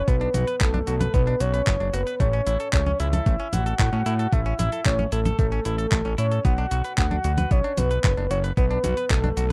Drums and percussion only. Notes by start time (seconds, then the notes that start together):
0.08 kick, closed hi-hat, cabasa
0.21 closed hi-hat
0.34 closed hi-hat, high conga, cabasa
0.48 closed hi-hat, cabasa
0.61 kick, clap, closed hi-hat, cabasa
0.74 closed hi-hat, high conga
0.87 closed hi-hat, cabasa
1.01 closed hi-hat, high conga, cabasa
1.14 kick, closed hi-hat, cabasa
1.27 closed hi-hat
1.40 closed hi-hat, cabasa
1.54 closed hi-hat, cabasa
1.67 kick, clap, closed hi-hat, cabasa
1.80 closed hi-hat
1.94 closed hi-hat, cabasa
2.07 closed hi-hat, cabasa
2.20 kick, closed hi-hat, cabasa
2.33 closed hi-hat
2.47 closed hi-hat, cabasa
2.60 closed hi-hat, cabasa
2.73 kick, clap, closed hi-hat, cabasa
2.86 closed hi-hat, high conga
3.00 closed hi-hat, cabasa
3.13 closed hi-hat, high conga, cabasa
3.26 kick, closed hi-hat, cabasa
3.40 closed hi-hat
3.53 closed hi-hat, high conga, cabasa
3.66 closed hi-hat, cabasa
3.79 kick, clap, closed hi-hat, cabasa
3.93 closed hi-hat
4.06 closed hi-hat, cabasa
4.19 closed hi-hat, cabasa
4.33 kick, closed hi-hat, cabasa
4.46 closed hi-hat
4.59 closed hi-hat, high conga, cabasa
4.72 closed hi-hat, cabasa
4.86 kick, clap, closed hi-hat, cabasa
4.99 closed hi-hat, high conga
5.12 closed hi-hat, cabasa
5.25 closed hi-hat, high conga, cabasa
5.39 kick, closed hi-hat, cabasa
5.52 closed hi-hat
5.65 closed hi-hat, cabasa
5.79 closed hi-hat, cabasa
5.92 kick, clap, closed hi-hat, cabasa
6.05 closed hi-hat
6.18 closed hi-hat, cabasa
6.32 closed hi-hat, cabasa
6.45 kick, closed hi-hat, cabasa
6.58 closed hi-hat
6.71 closed hi-hat, cabasa
6.84 closed hi-hat, cabasa
6.98 kick, clap, closed hi-hat, cabasa
7.11 closed hi-hat, high conga
7.24 closed hi-hat, cabasa
7.38 closed hi-hat, high conga, cabasa
7.51 kick, closed hi-hat, cabasa
7.64 closed hi-hat
7.77 closed hi-hat, high conga, cabasa
7.91 closed hi-hat, cabasa
8.04 kick, clap, closed hi-hat, cabasa
8.17 closed hi-hat
8.31 closed hi-hat, cabasa
8.44 closed hi-hat, cabasa
8.57 kick, closed hi-hat, cabasa
8.71 closed hi-hat
8.84 closed hi-hat, high conga, cabasa
8.97 closed hi-hat, cabasa
9.10 kick, clap, closed hi-hat, cabasa
9.24 closed hi-hat, high conga
9.37 closed hi-hat, cabasa